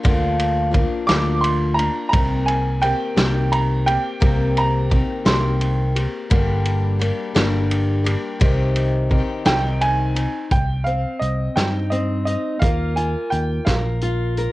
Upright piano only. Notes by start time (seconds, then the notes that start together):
1.07 D6
1.41 C6
1.74 A#5
2.09 A#5
2.46 G#5
2.82 G5
3.52 A#5
3.86 G5
4.58 A#5
5.26 C6
9.46 G5
9.81 G#5
10.52 G5
10.84 F5
11.20 D#5
11.56 G5
11.90 D#5
12.25 D#5
12.59 F5
12.96 G#5
13.30 G5
13.65 F5